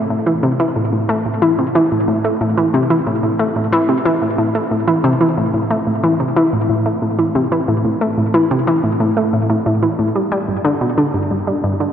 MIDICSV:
0, 0, Header, 1, 2, 480
1, 0, Start_track
1, 0, Key_signature, 0, "minor"
1, 0, Tempo, 659341
1, 1753, Time_signature, 4, 2, 24, 8
1, 8684, End_track
2, 0, Start_track
2, 0, Title_t, "Synth arpeggio sound"
2, 0, Program_c, 0, 84
2, 75, Note_on_c, 0, 45, 71
2, 161, Note_off_c, 0, 45, 0
2, 193, Note_on_c, 0, 52, 92
2, 280, Note_off_c, 0, 52, 0
2, 313, Note_on_c, 0, 48, 92
2, 401, Note_off_c, 0, 48, 0
2, 435, Note_on_c, 0, 52, 98
2, 486, Note_off_c, 0, 52, 0
2, 553, Note_on_c, 0, 45, 71
2, 665, Note_off_c, 0, 45, 0
2, 673, Note_on_c, 0, 45, 70
2, 787, Note_off_c, 0, 45, 0
2, 794, Note_on_c, 0, 57, 83
2, 907, Note_off_c, 0, 57, 0
2, 915, Note_on_c, 0, 45, 71
2, 1001, Note_off_c, 0, 45, 0
2, 1034, Note_on_c, 0, 52, 94
2, 1121, Note_off_c, 0, 52, 0
2, 1155, Note_on_c, 0, 48, 91
2, 1241, Note_off_c, 0, 48, 0
2, 1276, Note_on_c, 0, 52, 94
2, 1327, Note_off_c, 0, 52, 0
2, 1397, Note_on_c, 0, 45, 70
2, 1506, Note_off_c, 0, 45, 0
2, 1514, Note_on_c, 0, 45, 75
2, 1628, Note_off_c, 0, 45, 0
2, 1635, Note_on_c, 0, 57, 73
2, 1748, Note_off_c, 0, 57, 0
2, 1755, Note_on_c, 0, 45, 82
2, 1841, Note_off_c, 0, 45, 0
2, 1875, Note_on_c, 0, 52, 95
2, 1961, Note_off_c, 0, 52, 0
2, 1994, Note_on_c, 0, 48, 91
2, 2081, Note_off_c, 0, 48, 0
2, 2113, Note_on_c, 0, 52, 95
2, 2165, Note_off_c, 0, 52, 0
2, 2232, Note_on_c, 0, 45, 78
2, 2344, Note_off_c, 0, 45, 0
2, 2352, Note_on_c, 0, 45, 73
2, 2467, Note_off_c, 0, 45, 0
2, 2471, Note_on_c, 0, 57, 72
2, 2586, Note_off_c, 0, 57, 0
2, 2592, Note_on_c, 0, 45, 71
2, 2680, Note_off_c, 0, 45, 0
2, 2712, Note_on_c, 0, 52, 97
2, 2800, Note_off_c, 0, 52, 0
2, 2831, Note_on_c, 0, 48, 90
2, 2919, Note_off_c, 0, 48, 0
2, 2952, Note_on_c, 0, 52, 94
2, 3005, Note_off_c, 0, 52, 0
2, 3070, Note_on_c, 0, 45, 73
2, 3182, Note_off_c, 0, 45, 0
2, 3191, Note_on_c, 0, 45, 79
2, 3306, Note_off_c, 0, 45, 0
2, 3312, Note_on_c, 0, 57, 71
2, 3426, Note_off_c, 0, 57, 0
2, 3430, Note_on_c, 0, 45, 74
2, 3519, Note_off_c, 0, 45, 0
2, 3549, Note_on_c, 0, 52, 97
2, 3639, Note_off_c, 0, 52, 0
2, 3670, Note_on_c, 0, 48, 100
2, 3759, Note_off_c, 0, 48, 0
2, 3791, Note_on_c, 0, 52, 94
2, 3844, Note_off_c, 0, 52, 0
2, 3913, Note_on_c, 0, 45, 73
2, 4024, Note_off_c, 0, 45, 0
2, 4032, Note_on_c, 0, 45, 71
2, 4147, Note_off_c, 0, 45, 0
2, 4153, Note_on_c, 0, 57, 78
2, 4267, Note_off_c, 0, 57, 0
2, 4273, Note_on_c, 0, 45, 73
2, 4360, Note_off_c, 0, 45, 0
2, 4394, Note_on_c, 0, 52, 97
2, 4481, Note_off_c, 0, 52, 0
2, 4514, Note_on_c, 0, 48, 94
2, 4601, Note_off_c, 0, 48, 0
2, 4634, Note_on_c, 0, 52, 98
2, 4686, Note_off_c, 0, 52, 0
2, 4753, Note_on_c, 0, 45, 72
2, 4863, Note_off_c, 0, 45, 0
2, 4872, Note_on_c, 0, 45, 73
2, 4986, Note_off_c, 0, 45, 0
2, 4992, Note_on_c, 0, 57, 74
2, 5106, Note_off_c, 0, 57, 0
2, 5111, Note_on_c, 0, 45, 78
2, 5200, Note_off_c, 0, 45, 0
2, 5232, Note_on_c, 0, 52, 93
2, 5320, Note_off_c, 0, 52, 0
2, 5352, Note_on_c, 0, 48, 97
2, 5440, Note_off_c, 0, 48, 0
2, 5473, Note_on_c, 0, 52, 99
2, 5525, Note_off_c, 0, 52, 0
2, 5593, Note_on_c, 0, 45, 77
2, 5704, Note_off_c, 0, 45, 0
2, 5712, Note_on_c, 0, 45, 72
2, 5827, Note_off_c, 0, 45, 0
2, 5833, Note_on_c, 0, 57, 73
2, 5947, Note_off_c, 0, 57, 0
2, 5953, Note_on_c, 0, 45, 70
2, 6041, Note_off_c, 0, 45, 0
2, 6072, Note_on_c, 0, 52, 96
2, 6160, Note_off_c, 0, 52, 0
2, 6195, Note_on_c, 0, 48, 96
2, 6282, Note_off_c, 0, 48, 0
2, 6314, Note_on_c, 0, 52, 100
2, 6366, Note_off_c, 0, 52, 0
2, 6432, Note_on_c, 0, 45, 74
2, 6544, Note_off_c, 0, 45, 0
2, 6553, Note_on_c, 0, 45, 83
2, 6667, Note_off_c, 0, 45, 0
2, 6674, Note_on_c, 0, 57, 71
2, 6787, Note_off_c, 0, 57, 0
2, 6794, Note_on_c, 0, 45, 70
2, 6881, Note_off_c, 0, 45, 0
2, 6914, Note_on_c, 0, 45, 98
2, 7001, Note_off_c, 0, 45, 0
2, 7033, Note_on_c, 0, 45, 78
2, 7121, Note_off_c, 0, 45, 0
2, 7153, Note_on_c, 0, 52, 73
2, 7206, Note_off_c, 0, 52, 0
2, 7272, Note_on_c, 0, 45, 73
2, 7360, Note_off_c, 0, 45, 0
2, 7393, Note_on_c, 0, 55, 72
2, 7480, Note_off_c, 0, 55, 0
2, 7511, Note_on_c, 0, 55, 80
2, 7626, Note_off_c, 0, 55, 0
2, 7632, Note_on_c, 0, 43, 71
2, 7720, Note_off_c, 0, 43, 0
2, 7750, Note_on_c, 0, 50, 98
2, 7839, Note_off_c, 0, 50, 0
2, 7871, Note_on_c, 0, 47, 96
2, 7959, Note_off_c, 0, 47, 0
2, 7991, Note_on_c, 0, 50, 99
2, 8044, Note_off_c, 0, 50, 0
2, 8111, Note_on_c, 0, 43, 71
2, 8226, Note_off_c, 0, 43, 0
2, 8234, Note_on_c, 0, 43, 74
2, 8347, Note_off_c, 0, 43, 0
2, 8352, Note_on_c, 0, 55, 69
2, 8467, Note_off_c, 0, 55, 0
2, 8472, Note_on_c, 0, 43, 83
2, 8560, Note_off_c, 0, 43, 0
2, 8593, Note_on_c, 0, 50, 91
2, 8680, Note_off_c, 0, 50, 0
2, 8684, End_track
0, 0, End_of_file